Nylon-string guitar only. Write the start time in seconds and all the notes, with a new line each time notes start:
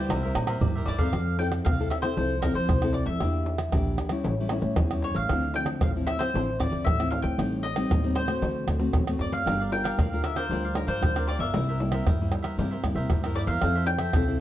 Already playing: G3 A#3 E4
0.11 C3
0.23 G3 A#3 E4
0.62 G2 G3 A#3 E4
0.99 C4 A4
1.15 F3
1.38 C4 E4 A4
1.66 C3
1.80 C4 E4 A4
2.04 C4 E4 A4
2.17 F3 C4 E4 A4
2.43 C4 E4 A4
2.70 C3
2.83 C4 E4 A4
3.21 E3 A#3 D4 G4
3.74 E3 A#3 D4 G4
4.11 G3 C#4 E4
4.26 A2
4.40 G3 C#4 E4
4.51 G3 C#4 E4
4.79 E3
4.92 G3 C#4 E4
5.30 D3 F3 C4 E4
5.55 F3 C4 E4
5.82 A2
5.96 F3 C4 E4
6.19 F3 C4 E4
6.35 D3 F3 C4 E4
6.59 F3 C4 E4
6.86 A2
6.99 F3 C4 E4
7.39 A2 G3 C4 D#4
7.76 G3 C4 D#4
7.90 A2
8.03 G3 C4 D#4
8.27 A3 C4 F#4
8.42 D3
8.79 A3 C4 F#4
8.94 A2
9.08 A3 C4 F#4
9.46 G3 D4 F4 A#4
9.71 D4 F4 A#4
9.98 D3
10.13 D4 F4 A#4
10.36 D4 F4 A#4
10.51 G3 D4 F4 A#4
10.76 D4 F4 A#4
11.03 D3
11.16 D4 F4 A#4
11.55 C3 G3 A#3 E4
11.80 G3 A#3 E4
12.07 G2
12.21 G3 A#3 E4
12.59 C3 G3 A#3 E4
12.83 G3 A#3 E4
13.10 G2
13.25 G3 A#3 E4
13.63 F3 C4 E4 A4
14.15 C3 C4 E4 A4
14.28 C4 E4 A4